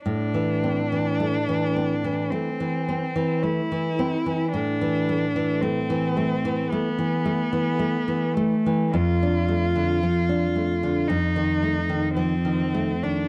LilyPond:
<<
  \new Staff \with { instrumentName = "Cello" } { \time 4/4 \key a \minor \tempo 4 = 54 d'2 c'4 e'4 | d'4 c'4 b4. a8 | f'2 ees'4 c'8. d'16 | }
  \new Staff \with { instrumentName = "Nylon-string guitar" } { \clef bass \time 4/4 \key a \minor a,16 e16 c'16 e16 a16 e16 c'16 e16 a16 e16 c'16 e16 a16 e16 c'16 e16 | a,16 e16 a16 e16 a16 e16 a16 e16 a16 e16 a16 e16 a16 e16 a16 e16 | f,16 d'16 a16 d16 f16 d'16 a16 d16 f,16 ees16 a16 ees16 f16 ees16 a16 ees16 | }
>>